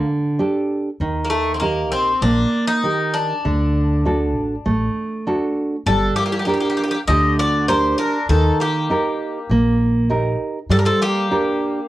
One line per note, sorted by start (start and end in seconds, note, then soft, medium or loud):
0.00 0.38 D3 medium
0.39 0.88 D4 soft
0.39 0.89 G4 soft
0.39 0.89 A4 medium
1.00 1.92 D#2 medium
1.00 1.60 D#3 medium
1.24 1.29 A#3 medium
1.30 1.54 A3 medium
1.54 1.59 C4 medium
1.60 1.89 A#3 medium
1.60 2.10 D#4 soft
1.60 2.10 G4 soft
1.60 2.11 A#4 soft
1.92 2.14 A#1 loud
1.92 2.23 C4 medium
2.22 2.43 A#1 medium
2.22 2.82 A#3 medium
2.22 2.65 D4 medium
2.67 3.15 D#4 loud
2.83 3.32 D#3 soft
2.83 3.33 G4 soft
2.83 3.32 A#4 soft
3.14 5.22 D4 medium
3.45 4.34 D2 medium
3.45 4.04 D3 medium
4.05 4.54 D4 soft
4.05 4.54 F#4 soft
4.05 4.54 A4 soft
4.34 4.56 A1 medium
4.66 4.87 A1 medium
4.66 5.25 A3 medium
5.27 5.75 D4 soft
5.27 5.75 F#4 soft
5.27 5.75 A4 medium
5.86 6.07 G1 medium
5.86 6.46 G3 medium
5.86 6.15 D4 medium
5.86 6.16 A4 medium
6.16 6.24 A#3 medium
6.16 6.24 G4 medium
6.25 6.32 A#3 soft
6.25 6.31 G4 medium
6.32 6.40 A#3 medium
6.32 6.38 G4 medium
6.39 6.48 A#3 soft
6.39 6.44 G4 medium
6.45 6.55 A#3 medium
6.45 6.95 D4 soft
6.45 6.52 G4 medium
6.45 6.96 G4 soft
6.45 6.96 A#4 soft
6.54 6.63 A#3 soft
6.54 6.59 G4 medium
6.61 6.68 G4 medium
6.65 6.70 A#3 soft
6.70 6.77 A#3 soft
6.70 6.76 G4 soft
6.77 6.85 A#3 soft
6.77 6.82 G4 medium
6.84 6.90 G4 medium
6.88 6.93 A#3 soft
6.88 6.98 G4 medium
6.94 7.00 A#3 medium
7.08 7.92 D2 medium
7.08 7.67 D3 medium
7.08 7.37 G4 medium
7.08 7.39 D#5 loud
7.39 7.67 F#4 medium
7.39 7.67 D5 medium
7.68 8.17 D4 soft
7.68 8.17 G4 soft
7.68 7.97 G4 medium
7.68 8.17 A#4 medium
7.68 7.98 C5 medium
7.98 8.27 D4 medium
7.98 8.26 A#4 medium
8.29 8.50 D#2 medium
8.29 8.88 D#3 medium
8.29 8.57 D#4 medium
8.29 8.57 A4 medium
8.60 9.76 A#3 medium
8.60 9.77 G4 medium
8.90 9.38 D#4 soft
8.90 9.38 G4 soft
8.90 9.38 A#4 medium
9.49 10.34 A#1 medium
9.49 10.09 A#3 medium
10.10 10.58 D#4 soft
10.10 10.58 G4 soft
10.10 10.58 A#4 medium
10.69 10.91 G2 medium
10.69 11.28 G3 medium
10.69 10.76 D4 medium
10.69 10.78 A4 medium
10.77 10.83 D4 medium
10.77 10.85 A#4 medium
10.85 10.99 C4 medium
10.85 11.01 A4 medium
11.02 11.87 A#3 medium
11.02 11.88 G4 medium
11.31 11.79 D4 soft
11.31 11.79 G4 soft
11.31 11.79 A#4 medium